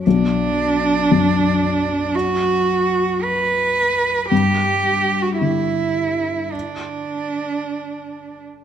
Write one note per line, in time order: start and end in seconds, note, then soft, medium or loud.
0.06 2.10 B1 medium
0.06 2.16 D4 medium
1.12 4.32 F#2 soft
2.15 3.24 F#4 medium
3.23 4.28 B4 medium
4.29 6.50 G2 soft
4.29 5.23 G4 medium
5.22 5.38 F#4 medium
5.38 8.64 D3 soft
5.38 6.53 E4 medium
6.52 8.43 D4 soft